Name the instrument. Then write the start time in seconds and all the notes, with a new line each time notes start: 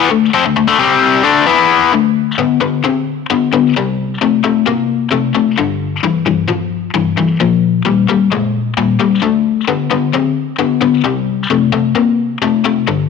overdriven electric guitar
0.00 E3 B3
0.11 D3 A3
0.34 F3 C4
0.46 D3 A3
0.56 D3 A3
0.68 D3 A3
0.79 C3 G3 C4
1.24 D3 A3 D4
1.47 E3 B3 E4
1.93 D3 A3
2.38 D3 B3
2.61 D3 B3
2.84 D3 C4
3.30 D3 B3
3.53 D3 B3
3.76 C3 G3
4.21 C3 A3
4.44 C3 A3
4.66 C3 A#3
5.12 C3 A3
5.35 C3 A3
5.58 G2 D3
6.03 G2 E3
6.26 G2 E3
6.49 G2 F3
6.94 G2 E3
7.17 G2 E3
7.40 A#2 F3
7.85 A#2 G3
8.09 A#2 G3
8.32 A#2 G#3
8.77 A#2 G3
9.00 A#2 G3
9.22 D3 A3
9.68 D3 B3
9.91 D3 B3
10.13 D3 C4
10.59 D3 B3
10.81 D3 B3
11.04 C3 G3
11.50 C3 A3
11.72 C3 A3
11.96 C3 A#3
12.42 C3 A3
12.64 C3 A3
12.88 G2 D3